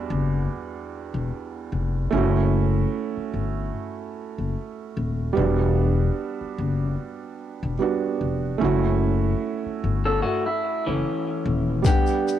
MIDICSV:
0, 0, Header, 1, 7, 480
1, 0, Start_track
1, 0, Tempo, 810811
1, 1256, Time_signature, 4, 2, 24, 8
1, 7336, End_track
2, 0, Start_track
2, 0, Title_t, "Nylon-string guitar"
2, 0, Program_c, 0, 24
2, 7026, Note_on_c, 0, 67, 92
2, 7336, Note_off_c, 0, 67, 0
2, 7336, End_track
3, 0, Start_track
3, 0, Title_t, "Clean electric guitar"
3, 0, Program_c, 1, 27
3, 5952, Note_on_c, 1, 69, 83
3, 5955, Note_on_c, 1, 61, 64
3, 6050, Note_off_c, 1, 69, 0
3, 6052, Note_off_c, 1, 61, 0
3, 6052, Note_on_c, 1, 66, 79
3, 6057, Note_on_c, 1, 57, 69
3, 6184, Note_off_c, 1, 66, 0
3, 6187, Note_off_c, 1, 57, 0
3, 6194, Note_on_c, 1, 64, 76
3, 6421, Note_off_c, 1, 64, 0
3, 6432, Note_on_c, 1, 52, 64
3, 6435, Note_on_c, 1, 61, 65
3, 6992, Note_off_c, 1, 52, 0
3, 6993, Note_off_c, 1, 61, 0
3, 7336, End_track
4, 0, Start_track
4, 0, Title_t, "Felt piano"
4, 0, Program_c, 2, 0
4, 0, Control_c, 2, 64, 127
4, 0, Note_on_c, 2, 40, 68
4, 0, Note_on_c, 2, 55, 68
4, 0, Note_on_c, 2, 59, 62
4, 0, Note_on_c, 2, 62, 76
4, 0, Note_on_c, 2, 66, 83
4, 1229, Note_off_c, 2, 40, 0
4, 1233, Note_off_c, 2, 55, 0
4, 1238, Note_off_c, 2, 59, 0
4, 1243, Note_off_c, 2, 62, 0
4, 1246, Note_on_c, 2, 57, 74
4, 1248, Note_off_c, 2, 66, 0
4, 1259, Note_on_c, 2, 61, 77
4, 1264, Control_c, 2, 64, 0
4, 1271, Note_on_c, 2, 64, 65
4, 1283, Note_on_c, 2, 66, 87
4, 1384, Control_c, 2, 64, 127
4, 3147, Note_off_c, 2, 57, 0
4, 3153, Note_on_c, 2, 55, 78
4, 3154, Note_off_c, 2, 61, 0
4, 3160, Note_off_c, 2, 64, 0
4, 3166, Note_off_c, 2, 66, 0
4, 3167, Note_on_c, 2, 59, 70
4, 3181, Note_on_c, 2, 62, 72
4, 3183, Control_c, 2, 64, 0
4, 3192, Note_on_c, 2, 66, 77
4, 3277, Control_c, 2, 64, 127
4, 4581, Note_off_c, 2, 55, 0
4, 4588, Note_off_c, 2, 59, 0
4, 4595, Note_off_c, 2, 62, 0
4, 4600, Note_off_c, 2, 66, 0
4, 4611, Note_on_c, 2, 55, 51
4, 4619, Note_on_c, 2, 59, 50
4, 4626, Note_on_c, 2, 62, 56
4, 4630, Note_on_c, 2, 66, 69
4, 5080, Note_on_c, 2, 57, 71
4, 5091, Note_on_c, 2, 61, 67
4, 5094, Note_off_c, 2, 55, 0
4, 5097, Note_off_c, 2, 59, 0
4, 5101, Note_off_c, 2, 62, 0
4, 5103, Note_off_c, 2, 66, 0
4, 5104, Control_c, 2, 64, 0
4, 5105, Note_on_c, 2, 64, 68
4, 5117, Note_on_c, 2, 66, 86
4, 5213, Control_c, 2, 64, 127
4, 6984, Note_off_c, 2, 57, 0
4, 6990, Note_off_c, 2, 61, 0
4, 6997, Note_off_c, 2, 64, 0
4, 7001, Note_on_c, 2, 55, 68
4, 7003, Note_off_c, 2, 66, 0
4, 7014, Note_on_c, 2, 59, 64
4, 7023, Control_c, 2, 64, 0
4, 7026, Note_on_c, 2, 62, 64
4, 7039, Note_on_c, 2, 78, 80
4, 7136, Control_c, 2, 64, 127
4, 7336, Note_off_c, 2, 55, 0
4, 7336, Note_off_c, 2, 59, 0
4, 7336, Note_off_c, 2, 62, 0
4, 7336, Note_off_c, 2, 78, 0
4, 7336, End_track
5, 0, Start_track
5, 0, Title_t, "Upright bass"
5, 0, Program_c, 3, 32
5, 60, Note_on_c, 3, 30, 99
5, 270, Note_off_c, 3, 30, 0
5, 676, Note_on_c, 3, 28, 91
5, 766, Note_off_c, 3, 28, 0
5, 1019, Note_on_c, 3, 29, 88
5, 1230, Note_off_c, 3, 29, 0
5, 1257, Note_on_c, 3, 30, 97
5, 1681, Note_off_c, 3, 30, 0
5, 1975, Note_on_c, 3, 31, 84
5, 2188, Note_off_c, 3, 31, 0
5, 2594, Note_on_c, 3, 30, 78
5, 2685, Note_off_c, 3, 30, 0
5, 2940, Note_on_c, 3, 27, 93
5, 3150, Note_off_c, 3, 27, 0
5, 3178, Note_on_c, 3, 28, 103
5, 3601, Note_off_c, 3, 28, 0
5, 3899, Note_on_c, 3, 30, 99
5, 4110, Note_off_c, 3, 30, 0
5, 4517, Note_on_c, 3, 28, 93
5, 4606, Note_off_c, 3, 28, 0
5, 4860, Note_on_c, 3, 29, 85
5, 5070, Note_off_c, 3, 29, 0
5, 5099, Note_on_c, 3, 30, 98
5, 5522, Note_off_c, 3, 30, 0
5, 5824, Note_on_c, 3, 31, 92
5, 6033, Note_off_c, 3, 31, 0
5, 6441, Note_on_c, 3, 30, 76
5, 6529, Note_off_c, 3, 30, 0
5, 6782, Note_on_c, 3, 27, 103
5, 6992, Note_off_c, 3, 27, 0
5, 7336, End_track
6, 0, Start_track
6, 0, Title_t, "Muted upright bass strokes"
6, 1875, Note_on_c, 9, 29, 45
6, 1934, Note_off_c, 9, 29, 0
6, 3796, Note_on_c, 9, 29, 45
6, 3855, Note_off_c, 9, 29, 0
6, 5717, Note_on_c, 9, 29, 44
6, 5776, Note_off_c, 9, 29, 0
6, 7336, End_track
7, 0, Start_track
7, 0, Title_t, "Drums"
7, 7015, Note_on_c, 9, 36, 105
7, 7015, Note_on_c, 9, 82, 74
7, 7022, Note_on_c, 9, 42, 81
7, 7074, Note_off_c, 9, 36, 0
7, 7074, Note_off_c, 9, 82, 0
7, 7081, Note_off_c, 9, 42, 0
7, 7145, Note_on_c, 9, 82, 49
7, 7205, Note_off_c, 9, 82, 0
7, 7269, Note_on_c, 9, 82, 50
7, 7271, Note_off_c, 9, 82, 0
7, 7271, Note_on_c, 9, 82, 44
7, 7330, Note_off_c, 9, 82, 0
7, 7336, End_track
0, 0, End_of_file